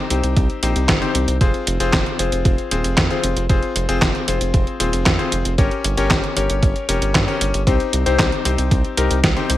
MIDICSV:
0, 0, Header, 1, 4, 480
1, 0, Start_track
1, 0, Key_signature, -4, "minor"
1, 0, Tempo, 521739
1, 1296, Time_signature, 4, 2, 24, 8
1, 8810, End_track
2, 0, Start_track
2, 0, Title_t, "Electric grand piano"
2, 0, Program_c, 0, 2
2, 96, Note_on_c, 0, 60, 78
2, 96, Note_on_c, 0, 67, 70
2, 96, Note_on_c, 0, 72, 81
2, 97, Note_on_c, 0, 63, 68
2, 547, Note_off_c, 0, 60, 0
2, 547, Note_off_c, 0, 67, 0
2, 547, Note_off_c, 0, 72, 0
2, 548, Note_off_c, 0, 63, 0
2, 576, Note_on_c, 0, 60, 80
2, 576, Note_on_c, 0, 67, 72
2, 576, Note_on_c, 0, 72, 86
2, 577, Note_on_c, 0, 63, 72
2, 907, Note_off_c, 0, 60, 0
2, 907, Note_off_c, 0, 67, 0
2, 907, Note_off_c, 0, 72, 0
2, 908, Note_off_c, 0, 63, 0
2, 935, Note_on_c, 0, 60, 84
2, 935, Note_on_c, 0, 63, 76
2, 935, Note_on_c, 0, 67, 75
2, 935, Note_on_c, 0, 72, 91
2, 1240, Note_off_c, 0, 60, 0
2, 1240, Note_off_c, 0, 63, 0
2, 1240, Note_off_c, 0, 67, 0
2, 1240, Note_off_c, 0, 72, 0
2, 1296, Note_on_c, 0, 60, 75
2, 1296, Note_on_c, 0, 65, 71
2, 1296, Note_on_c, 0, 68, 71
2, 1296, Note_on_c, 0, 72, 88
2, 1627, Note_off_c, 0, 65, 0
2, 1627, Note_off_c, 0, 68, 0
2, 1627, Note_off_c, 0, 72, 0
2, 1628, Note_off_c, 0, 60, 0
2, 1657, Note_on_c, 0, 60, 89
2, 1657, Note_on_c, 0, 65, 82
2, 1657, Note_on_c, 0, 72, 99
2, 1658, Note_on_c, 0, 68, 81
2, 1988, Note_off_c, 0, 60, 0
2, 1988, Note_off_c, 0, 65, 0
2, 1988, Note_off_c, 0, 68, 0
2, 1988, Note_off_c, 0, 72, 0
2, 2015, Note_on_c, 0, 68, 69
2, 2015, Note_on_c, 0, 72, 83
2, 2016, Note_on_c, 0, 60, 75
2, 2016, Note_on_c, 0, 65, 70
2, 2467, Note_off_c, 0, 60, 0
2, 2467, Note_off_c, 0, 65, 0
2, 2467, Note_off_c, 0, 68, 0
2, 2467, Note_off_c, 0, 72, 0
2, 2496, Note_on_c, 0, 68, 73
2, 2497, Note_on_c, 0, 60, 80
2, 2497, Note_on_c, 0, 65, 73
2, 2497, Note_on_c, 0, 72, 89
2, 2828, Note_off_c, 0, 60, 0
2, 2828, Note_off_c, 0, 65, 0
2, 2828, Note_off_c, 0, 68, 0
2, 2828, Note_off_c, 0, 72, 0
2, 2858, Note_on_c, 0, 60, 81
2, 2858, Note_on_c, 0, 65, 74
2, 2858, Note_on_c, 0, 68, 76
2, 2858, Note_on_c, 0, 72, 91
2, 3161, Note_off_c, 0, 60, 0
2, 3161, Note_off_c, 0, 65, 0
2, 3161, Note_off_c, 0, 68, 0
2, 3161, Note_off_c, 0, 72, 0
2, 3217, Note_on_c, 0, 60, 77
2, 3217, Note_on_c, 0, 65, 69
2, 3217, Note_on_c, 0, 68, 73
2, 3217, Note_on_c, 0, 72, 87
2, 3548, Note_off_c, 0, 60, 0
2, 3548, Note_off_c, 0, 65, 0
2, 3548, Note_off_c, 0, 68, 0
2, 3548, Note_off_c, 0, 72, 0
2, 3576, Note_on_c, 0, 68, 83
2, 3577, Note_on_c, 0, 60, 90
2, 3577, Note_on_c, 0, 65, 81
2, 3577, Note_on_c, 0, 72, 103
2, 3907, Note_off_c, 0, 68, 0
2, 3908, Note_off_c, 0, 60, 0
2, 3908, Note_off_c, 0, 65, 0
2, 3908, Note_off_c, 0, 72, 0
2, 3936, Note_on_c, 0, 65, 70
2, 3936, Note_on_c, 0, 72, 82
2, 3937, Note_on_c, 0, 60, 75
2, 3937, Note_on_c, 0, 68, 69
2, 4387, Note_off_c, 0, 72, 0
2, 4388, Note_off_c, 0, 60, 0
2, 4388, Note_off_c, 0, 65, 0
2, 4388, Note_off_c, 0, 68, 0
2, 4415, Note_on_c, 0, 60, 79
2, 4415, Note_on_c, 0, 65, 74
2, 4415, Note_on_c, 0, 68, 73
2, 4415, Note_on_c, 0, 72, 87
2, 4747, Note_off_c, 0, 60, 0
2, 4747, Note_off_c, 0, 65, 0
2, 4747, Note_off_c, 0, 68, 0
2, 4747, Note_off_c, 0, 72, 0
2, 4774, Note_on_c, 0, 65, 79
2, 4775, Note_on_c, 0, 60, 82
2, 4775, Note_on_c, 0, 68, 75
2, 4775, Note_on_c, 0, 72, 92
2, 5079, Note_off_c, 0, 60, 0
2, 5079, Note_off_c, 0, 65, 0
2, 5080, Note_off_c, 0, 68, 0
2, 5080, Note_off_c, 0, 72, 0
2, 5136, Note_on_c, 0, 61, 79
2, 5136, Note_on_c, 0, 67, 71
2, 5137, Note_on_c, 0, 70, 71
2, 5137, Note_on_c, 0, 73, 85
2, 5467, Note_off_c, 0, 61, 0
2, 5468, Note_off_c, 0, 67, 0
2, 5468, Note_off_c, 0, 70, 0
2, 5468, Note_off_c, 0, 73, 0
2, 5496, Note_on_c, 0, 61, 92
2, 5496, Note_on_c, 0, 67, 82
2, 5496, Note_on_c, 0, 70, 81
2, 5496, Note_on_c, 0, 73, 102
2, 5827, Note_off_c, 0, 61, 0
2, 5827, Note_off_c, 0, 67, 0
2, 5827, Note_off_c, 0, 70, 0
2, 5827, Note_off_c, 0, 73, 0
2, 5855, Note_on_c, 0, 67, 69
2, 5856, Note_on_c, 0, 61, 75
2, 5856, Note_on_c, 0, 70, 68
2, 5856, Note_on_c, 0, 73, 84
2, 6307, Note_off_c, 0, 61, 0
2, 6307, Note_off_c, 0, 67, 0
2, 6307, Note_off_c, 0, 70, 0
2, 6307, Note_off_c, 0, 73, 0
2, 6335, Note_on_c, 0, 67, 74
2, 6336, Note_on_c, 0, 61, 82
2, 6336, Note_on_c, 0, 70, 74
2, 6336, Note_on_c, 0, 73, 91
2, 6667, Note_off_c, 0, 61, 0
2, 6667, Note_off_c, 0, 67, 0
2, 6667, Note_off_c, 0, 70, 0
2, 6667, Note_off_c, 0, 73, 0
2, 6694, Note_on_c, 0, 61, 85
2, 6694, Note_on_c, 0, 70, 77
2, 6694, Note_on_c, 0, 73, 92
2, 6695, Note_on_c, 0, 67, 76
2, 6999, Note_off_c, 0, 61, 0
2, 6999, Note_off_c, 0, 70, 0
2, 6999, Note_off_c, 0, 73, 0
2, 7000, Note_off_c, 0, 67, 0
2, 7055, Note_on_c, 0, 60, 81
2, 7055, Note_on_c, 0, 63, 70
2, 7055, Note_on_c, 0, 67, 70
2, 7056, Note_on_c, 0, 72, 86
2, 7387, Note_off_c, 0, 60, 0
2, 7387, Note_off_c, 0, 63, 0
2, 7387, Note_off_c, 0, 67, 0
2, 7387, Note_off_c, 0, 72, 0
2, 7415, Note_on_c, 0, 72, 102
2, 7416, Note_on_c, 0, 60, 89
2, 7416, Note_on_c, 0, 63, 81
2, 7416, Note_on_c, 0, 67, 83
2, 7747, Note_off_c, 0, 60, 0
2, 7747, Note_off_c, 0, 63, 0
2, 7747, Note_off_c, 0, 67, 0
2, 7747, Note_off_c, 0, 72, 0
2, 7776, Note_on_c, 0, 60, 75
2, 7776, Note_on_c, 0, 63, 69
2, 7776, Note_on_c, 0, 67, 69
2, 7776, Note_on_c, 0, 72, 84
2, 8227, Note_off_c, 0, 60, 0
2, 8227, Note_off_c, 0, 63, 0
2, 8227, Note_off_c, 0, 67, 0
2, 8227, Note_off_c, 0, 72, 0
2, 8255, Note_on_c, 0, 60, 84
2, 8255, Note_on_c, 0, 63, 78
2, 8255, Note_on_c, 0, 67, 81
2, 8255, Note_on_c, 0, 70, 93
2, 8446, Note_off_c, 0, 60, 0
2, 8446, Note_off_c, 0, 63, 0
2, 8446, Note_off_c, 0, 67, 0
2, 8446, Note_off_c, 0, 70, 0
2, 8617, Note_on_c, 0, 60, 84
2, 8617, Note_on_c, 0, 72, 94
2, 8618, Note_on_c, 0, 63, 79
2, 8618, Note_on_c, 0, 67, 78
2, 8810, Note_off_c, 0, 60, 0
2, 8810, Note_off_c, 0, 63, 0
2, 8810, Note_off_c, 0, 67, 0
2, 8810, Note_off_c, 0, 72, 0
2, 8810, End_track
3, 0, Start_track
3, 0, Title_t, "Analog synth bass"
3, 0, Program_c, 1, 38
3, 97, Note_on_c, 1, 36, 97
3, 202, Note_off_c, 1, 36, 0
3, 216, Note_on_c, 1, 36, 82
3, 321, Note_off_c, 1, 36, 0
3, 336, Note_on_c, 1, 36, 105
3, 441, Note_off_c, 1, 36, 0
3, 576, Note_on_c, 1, 34, 93
3, 681, Note_off_c, 1, 34, 0
3, 697, Note_on_c, 1, 36, 85
3, 802, Note_off_c, 1, 36, 0
3, 816, Note_on_c, 1, 31, 101
3, 921, Note_off_c, 1, 31, 0
3, 1055, Note_on_c, 1, 36, 96
3, 1161, Note_off_c, 1, 36, 0
3, 1176, Note_on_c, 1, 36, 86
3, 1281, Note_off_c, 1, 36, 0
3, 1296, Note_on_c, 1, 29, 103
3, 1401, Note_off_c, 1, 29, 0
3, 1537, Note_on_c, 1, 29, 99
3, 1642, Note_off_c, 1, 29, 0
3, 1656, Note_on_c, 1, 29, 84
3, 1761, Note_off_c, 1, 29, 0
3, 1776, Note_on_c, 1, 29, 105
3, 1881, Note_off_c, 1, 29, 0
3, 2015, Note_on_c, 1, 29, 96
3, 2121, Note_off_c, 1, 29, 0
3, 2137, Note_on_c, 1, 29, 81
3, 2241, Note_off_c, 1, 29, 0
3, 2256, Note_on_c, 1, 29, 102
3, 2361, Note_off_c, 1, 29, 0
3, 2497, Note_on_c, 1, 27, 99
3, 2601, Note_off_c, 1, 27, 0
3, 2617, Note_on_c, 1, 29, 84
3, 2721, Note_off_c, 1, 29, 0
3, 2735, Note_on_c, 1, 41, 103
3, 2841, Note_off_c, 1, 41, 0
3, 2975, Note_on_c, 1, 29, 93
3, 3081, Note_off_c, 1, 29, 0
3, 3096, Note_on_c, 1, 29, 83
3, 3201, Note_off_c, 1, 29, 0
3, 3216, Note_on_c, 1, 29, 105
3, 3321, Note_off_c, 1, 29, 0
3, 3456, Note_on_c, 1, 29, 97
3, 3561, Note_off_c, 1, 29, 0
3, 3576, Note_on_c, 1, 29, 82
3, 3681, Note_off_c, 1, 29, 0
3, 3696, Note_on_c, 1, 29, 106
3, 3801, Note_off_c, 1, 29, 0
3, 3936, Note_on_c, 1, 29, 96
3, 4041, Note_off_c, 1, 29, 0
3, 4056, Note_on_c, 1, 29, 83
3, 4161, Note_off_c, 1, 29, 0
3, 4176, Note_on_c, 1, 29, 101
3, 4281, Note_off_c, 1, 29, 0
3, 4417, Note_on_c, 1, 27, 98
3, 4522, Note_off_c, 1, 27, 0
3, 4536, Note_on_c, 1, 29, 84
3, 4641, Note_off_c, 1, 29, 0
3, 4656, Note_on_c, 1, 41, 102
3, 4761, Note_off_c, 1, 41, 0
3, 4898, Note_on_c, 1, 29, 94
3, 5002, Note_off_c, 1, 29, 0
3, 5018, Note_on_c, 1, 29, 85
3, 5122, Note_off_c, 1, 29, 0
3, 5136, Note_on_c, 1, 31, 104
3, 5241, Note_off_c, 1, 31, 0
3, 5377, Note_on_c, 1, 31, 98
3, 5482, Note_off_c, 1, 31, 0
3, 5497, Note_on_c, 1, 31, 83
3, 5602, Note_off_c, 1, 31, 0
3, 5616, Note_on_c, 1, 31, 103
3, 5721, Note_off_c, 1, 31, 0
3, 5858, Note_on_c, 1, 31, 96
3, 5962, Note_off_c, 1, 31, 0
3, 5976, Note_on_c, 1, 31, 84
3, 6081, Note_off_c, 1, 31, 0
3, 6096, Note_on_c, 1, 31, 105
3, 6201, Note_off_c, 1, 31, 0
3, 6336, Note_on_c, 1, 29, 97
3, 6441, Note_off_c, 1, 29, 0
3, 6457, Note_on_c, 1, 31, 84
3, 6562, Note_off_c, 1, 31, 0
3, 6577, Note_on_c, 1, 43, 103
3, 6681, Note_off_c, 1, 43, 0
3, 6816, Note_on_c, 1, 31, 91
3, 6921, Note_off_c, 1, 31, 0
3, 6937, Note_on_c, 1, 31, 85
3, 7042, Note_off_c, 1, 31, 0
3, 7056, Note_on_c, 1, 36, 102
3, 7161, Note_off_c, 1, 36, 0
3, 7298, Note_on_c, 1, 36, 97
3, 7402, Note_off_c, 1, 36, 0
3, 7418, Note_on_c, 1, 36, 84
3, 7522, Note_off_c, 1, 36, 0
3, 7537, Note_on_c, 1, 36, 105
3, 7641, Note_off_c, 1, 36, 0
3, 7778, Note_on_c, 1, 36, 95
3, 7882, Note_off_c, 1, 36, 0
3, 7897, Note_on_c, 1, 36, 81
3, 8002, Note_off_c, 1, 36, 0
3, 8017, Note_on_c, 1, 36, 104
3, 8122, Note_off_c, 1, 36, 0
3, 8258, Note_on_c, 1, 36, 94
3, 8362, Note_off_c, 1, 36, 0
3, 8378, Note_on_c, 1, 36, 86
3, 8482, Note_off_c, 1, 36, 0
3, 8497, Note_on_c, 1, 36, 99
3, 8602, Note_off_c, 1, 36, 0
3, 8737, Note_on_c, 1, 36, 95
3, 8810, Note_off_c, 1, 36, 0
3, 8810, End_track
4, 0, Start_track
4, 0, Title_t, "Drums"
4, 96, Note_on_c, 9, 42, 88
4, 188, Note_off_c, 9, 42, 0
4, 216, Note_on_c, 9, 42, 51
4, 308, Note_off_c, 9, 42, 0
4, 336, Note_on_c, 9, 36, 126
4, 337, Note_on_c, 9, 42, 52
4, 428, Note_off_c, 9, 36, 0
4, 429, Note_off_c, 9, 42, 0
4, 457, Note_on_c, 9, 42, 26
4, 549, Note_off_c, 9, 42, 0
4, 577, Note_on_c, 9, 42, 91
4, 669, Note_off_c, 9, 42, 0
4, 697, Note_on_c, 9, 42, 51
4, 789, Note_off_c, 9, 42, 0
4, 816, Note_on_c, 9, 36, 108
4, 817, Note_on_c, 9, 38, 127
4, 817, Note_on_c, 9, 39, 91
4, 817, Note_on_c, 9, 42, 53
4, 908, Note_off_c, 9, 36, 0
4, 909, Note_off_c, 9, 38, 0
4, 909, Note_off_c, 9, 39, 0
4, 909, Note_off_c, 9, 42, 0
4, 937, Note_on_c, 9, 42, 27
4, 1029, Note_off_c, 9, 42, 0
4, 1057, Note_on_c, 9, 42, 93
4, 1149, Note_off_c, 9, 42, 0
4, 1177, Note_on_c, 9, 42, 52
4, 1269, Note_off_c, 9, 42, 0
4, 1296, Note_on_c, 9, 36, 122
4, 1297, Note_on_c, 9, 42, 52
4, 1388, Note_off_c, 9, 36, 0
4, 1389, Note_off_c, 9, 42, 0
4, 1418, Note_on_c, 9, 42, 26
4, 1510, Note_off_c, 9, 42, 0
4, 1537, Note_on_c, 9, 42, 93
4, 1629, Note_off_c, 9, 42, 0
4, 1657, Note_on_c, 9, 42, 53
4, 1749, Note_off_c, 9, 42, 0
4, 1776, Note_on_c, 9, 36, 109
4, 1777, Note_on_c, 9, 38, 123
4, 1777, Note_on_c, 9, 39, 90
4, 1777, Note_on_c, 9, 42, 53
4, 1868, Note_off_c, 9, 36, 0
4, 1869, Note_off_c, 9, 38, 0
4, 1869, Note_off_c, 9, 39, 0
4, 1869, Note_off_c, 9, 42, 0
4, 1898, Note_on_c, 9, 42, 27
4, 1990, Note_off_c, 9, 42, 0
4, 2017, Note_on_c, 9, 42, 91
4, 2109, Note_off_c, 9, 42, 0
4, 2137, Note_on_c, 9, 42, 52
4, 2229, Note_off_c, 9, 42, 0
4, 2256, Note_on_c, 9, 36, 125
4, 2256, Note_on_c, 9, 42, 54
4, 2348, Note_off_c, 9, 36, 0
4, 2348, Note_off_c, 9, 42, 0
4, 2377, Note_on_c, 9, 42, 26
4, 2469, Note_off_c, 9, 42, 0
4, 2497, Note_on_c, 9, 42, 95
4, 2589, Note_off_c, 9, 42, 0
4, 2616, Note_on_c, 9, 42, 52
4, 2708, Note_off_c, 9, 42, 0
4, 2736, Note_on_c, 9, 36, 107
4, 2737, Note_on_c, 9, 38, 125
4, 2737, Note_on_c, 9, 39, 89
4, 2737, Note_on_c, 9, 42, 51
4, 2828, Note_off_c, 9, 36, 0
4, 2829, Note_off_c, 9, 38, 0
4, 2829, Note_off_c, 9, 39, 0
4, 2829, Note_off_c, 9, 42, 0
4, 2857, Note_on_c, 9, 42, 26
4, 2949, Note_off_c, 9, 42, 0
4, 2977, Note_on_c, 9, 42, 96
4, 3069, Note_off_c, 9, 42, 0
4, 3096, Note_on_c, 9, 42, 52
4, 3188, Note_off_c, 9, 42, 0
4, 3215, Note_on_c, 9, 36, 120
4, 3216, Note_on_c, 9, 42, 52
4, 3307, Note_off_c, 9, 36, 0
4, 3308, Note_off_c, 9, 42, 0
4, 3336, Note_on_c, 9, 42, 28
4, 3428, Note_off_c, 9, 42, 0
4, 3457, Note_on_c, 9, 42, 93
4, 3549, Note_off_c, 9, 42, 0
4, 3577, Note_on_c, 9, 42, 54
4, 3669, Note_off_c, 9, 42, 0
4, 3695, Note_on_c, 9, 36, 104
4, 3697, Note_on_c, 9, 38, 116
4, 3697, Note_on_c, 9, 39, 87
4, 3697, Note_on_c, 9, 42, 52
4, 3787, Note_off_c, 9, 36, 0
4, 3789, Note_off_c, 9, 38, 0
4, 3789, Note_off_c, 9, 39, 0
4, 3789, Note_off_c, 9, 42, 0
4, 3817, Note_on_c, 9, 42, 28
4, 3909, Note_off_c, 9, 42, 0
4, 3937, Note_on_c, 9, 42, 96
4, 4029, Note_off_c, 9, 42, 0
4, 4057, Note_on_c, 9, 42, 54
4, 4149, Note_off_c, 9, 42, 0
4, 4175, Note_on_c, 9, 36, 122
4, 4177, Note_on_c, 9, 42, 54
4, 4267, Note_off_c, 9, 36, 0
4, 4269, Note_off_c, 9, 42, 0
4, 4298, Note_on_c, 9, 42, 28
4, 4390, Note_off_c, 9, 42, 0
4, 4417, Note_on_c, 9, 42, 95
4, 4509, Note_off_c, 9, 42, 0
4, 4537, Note_on_c, 9, 42, 55
4, 4629, Note_off_c, 9, 42, 0
4, 4655, Note_on_c, 9, 36, 103
4, 4656, Note_on_c, 9, 38, 116
4, 4656, Note_on_c, 9, 39, 86
4, 4656, Note_on_c, 9, 42, 55
4, 4747, Note_off_c, 9, 36, 0
4, 4748, Note_off_c, 9, 38, 0
4, 4748, Note_off_c, 9, 39, 0
4, 4748, Note_off_c, 9, 42, 0
4, 4777, Note_on_c, 9, 42, 27
4, 4869, Note_off_c, 9, 42, 0
4, 4896, Note_on_c, 9, 42, 96
4, 4988, Note_off_c, 9, 42, 0
4, 5016, Note_on_c, 9, 42, 54
4, 5108, Note_off_c, 9, 42, 0
4, 5136, Note_on_c, 9, 36, 114
4, 5137, Note_on_c, 9, 42, 57
4, 5228, Note_off_c, 9, 36, 0
4, 5229, Note_off_c, 9, 42, 0
4, 5257, Note_on_c, 9, 42, 28
4, 5349, Note_off_c, 9, 42, 0
4, 5377, Note_on_c, 9, 42, 102
4, 5469, Note_off_c, 9, 42, 0
4, 5497, Note_on_c, 9, 42, 56
4, 5589, Note_off_c, 9, 42, 0
4, 5616, Note_on_c, 9, 36, 102
4, 5617, Note_on_c, 9, 38, 116
4, 5617, Note_on_c, 9, 39, 89
4, 5617, Note_on_c, 9, 42, 56
4, 5708, Note_off_c, 9, 36, 0
4, 5709, Note_off_c, 9, 38, 0
4, 5709, Note_off_c, 9, 39, 0
4, 5709, Note_off_c, 9, 42, 0
4, 5737, Note_on_c, 9, 42, 29
4, 5829, Note_off_c, 9, 42, 0
4, 5857, Note_on_c, 9, 42, 100
4, 5949, Note_off_c, 9, 42, 0
4, 5977, Note_on_c, 9, 42, 57
4, 6069, Note_off_c, 9, 42, 0
4, 6096, Note_on_c, 9, 36, 117
4, 6097, Note_on_c, 9, 42, 57
4, 6188, Note_off_c, 9, 36, 0
4, 6189, Note_off_c, 9, 42, 0
4, 6217, Note_on_c, 9, 42, 28
4, 6309, Note_off_c, 9, 42, 0
4, 6337, Note_on_c, 9, 42, 102
4, 6429, Note_off_c, 9, 42, 0
4, 6458, Note_on_c, 9, 42, 56
4, 6550, Note_off_c, 9, 42, 0
4, 6576, Note_on_c, 9, 36, 102
4, 6578, Note_on_c, 9, 38, 115
4, 6578, Note_on_c, 9, 39, 92
4, 6578, Note_on_c, 9, 42, 57
4, 6668, Note_off_c, 9, 36, 0
4, 6670, Note_off_c, 9, 38, 0
4, 6670, Note_off_c, 9, 39, 0
4, 6670, Note_off_c, 9, 42, 0
4, 6699, Note_on_c, 9, 42, 28
4, 6791, Note_off_c, 9, 42, 0
4, 6818, Note_on_c, 9, 42, 101
4, 6910, Note_off_c, 9, 42, 0
4, 6938, Note_on_c, 9, 42, 59
4, 7030, Note_off_c, 9, 42, 0
4, 7056, Note_on_c, 9, 36, 116
4, 7058, Note_on_c, 9, 42, 58
4, 7148, Note_off_c, 9, 36, 0
4, 7150, Note_off_c, 9, 42, 0
4, 7177, Note_on_c, 9, 42, 28
4, 7269, Note_off_c, 9, 42, 0
4, 7297, Note_on_c, 9, 42, 102
4, 7389, Note_off_c, 9, 42, 0
4, 7418, Note_on_c, 9, 42, 57
4, 7510, Note_off_c, 9, 42, 0
4, 7536, Note_on_c, 9, 36, 107
4, 7537, Note_on_c, 9, 38, 117
4, 7537, Note_on_c, 9, 39, 94
4, 7537, Note_on_c, 9, 42, 56
4, 7628, Note_off_c, 9, 36, 0
4, 7629, Note_off_c, 9, 38, 0
4, 7629, Note_off_c, 9, 39, 0
4, 7629, Note_off_c, 9, 42, 0
4, 7658, Note_on_c, 9, 42, 29
4, 7750, Note_off_c, 9, 42, 0
4, 7777, Note_on_c, 9, 42, 99
4, 7869, Note_off_c, 9, 42, 0
4, 7897, Note_on_c, 9, 42, 58
4, 7989, Note_off_c, 9, 42, 0
4, 8016, Note_on_c, 9, 36, 120
4, 8018, Note_on_c, 9, 42, 59
4, 8108, Note_off_c, 9, 36, 0
4, 8110, Note_off_c, 9, 42, 0
4, 8138, Note_on_c, 9, 42, 29
4, 8230, Note_off_c, 9, 42, 0
4, 8257, Note_on_c, 9, 42, 102
4, 8349, Note_off_c, 9, 42, 0
4, 8378, Note_on_c, 9, 42, 57
4, 8470, Note_off_c, 9, 42, 0
4, 8497, Note_on_c, 9, 36, 103
4, 8497, Note_on_c, 9, 38, 111
4, 8497, Note_on_c, 9, 42, 57
4, 8589, Note_off_c, 9, 36, 0
4, 8589, Note_off_c, 9, 38, 0
4, 8589, Note_off_c, 9, 42, 0
4, 8617, Note_on_c, 9, 42, 29
4, 8709, Note_off_c, 9, 42, 0
4, 8737, Note_on_c, 9, 42, 99
4, 8810, Note_off_c, 9, 42, 0
4, 8810, End_track
0, 0, End_of_file